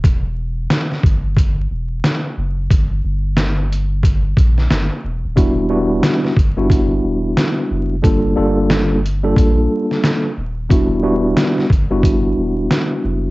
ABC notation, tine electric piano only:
X:1
M:4/4
L:1/16
Q:"Swing 16ths" 1/4=90
K:Em
V:1 name="Tine electric piano"
z16 | z16 | [G,B,DEF]2 [G,B,DEF]4 z [G,B,DEF]8 z | [G,_B,D=FA]2 [G,B,DFA]4 z [G,B,DFA]6 z3 |
[G,B,DEF]2 [G,B,DEF]4 z [G,B,DEF]8 z |]